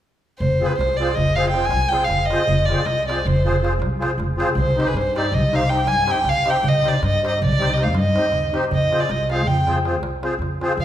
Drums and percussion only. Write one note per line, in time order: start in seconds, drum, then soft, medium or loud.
0.42 darbuka dum medium
0.81 darbuka tek medium
0.91 darbuka tek soft
1.02 darbuka tek medium
1.10 darbuka tek soft
1.17 darbuka dum medium
1.36 darbuka tek medium
1.46 darbuka tek soft
1.54 darbuka tek medium
1.63 darbuka tek soft
1.71 darbuka tek medium
1.92 darbuka tek medium
2.02 darbuka tek soft
2.10 darbuka tek medium
2.10 darbuka dum medium
2.30 darbuka tek medium
2.39 darbuka tek soft
2.47 darbuka dum medium
2.69 darbuka tek medium
2.86 darbuka tek medium
2.99 darbuka tek soft
3.09 darbuka tek medium
3.19 darbuka tek soft
3.27 darbuka dum medium
3.47 darbuka tek medium
3.56 darbuka tek soft
3.65 darbuka tek medium
3.72 darbuka tek soft
3.82 darbuka tek medium
4.02 darbuka tek medium
4.11 darbuka tek soft
4.20 darbuka tek medium
4.20 darbuka dum soft
4.40 darbuka tek medium
4.50 darbuka tek soft
4.58 darbuka dum medium
4.80 darbuka tek medium
4.97 darbuka tek medium
5.16 darbuka tek medium
5.33 darbuka dum medium
5.53 darbuka tek medium
5.62 darbuka tek soft
5.70 darbuka tek medium
5.78 darbuka tek soft
5.87 darbuka tek medium
6.08 darbuka tek medium
6.17 darbuka tek soft
6.25 darbuka tek medium
6.25 darbuka dum medium
6.46 darbuka tek medium
6.56 darbuka tek soft
6.64 darbuka dum medium
6.76 darbuka tek soft
6.86 darbuka tek medium
6.95 darbuka tek soft
7.03 darbuka tek medium
7.14 darbuka tek soft
7.25 darbuka tek medium
7.33 darbuka tek soft
7.42 darbuka dum medium
7.52 darbuka tek soft
7.62 darbuka tek medium
7.72 darbuka tek soft
7.78 darbuka tek medium
7.87 darbuka tek soft
7.95 darbuka tek medium
8.16 darbuka tek medium
8.25 darbuka tek soft
8.32 darbuka tek soft
8.32 darbuka dum soft
8.43 darbuka tek soft
8.54 darbuka tek medium
8.64 darbuka tek soft
8.71 darbuka dum medium
8.93 darbuka tek medium
9.09 darbuka tek medium
9.30 darbuka tek medium
9.47 darbuka dum medium
9.67 darbuka tek medium
9.76 darbuka tek soft
9.85 darbuka tek medium
9.94 darbuka tek soft
10.03 darbuka tek medium
10.23 darbuka tek medium
10.42 darbuka tek soft
10.42 darbuka dum soft
10.61 darbuka tek medium
10.71 darbuka tek soft
10.80 darbuka dum medium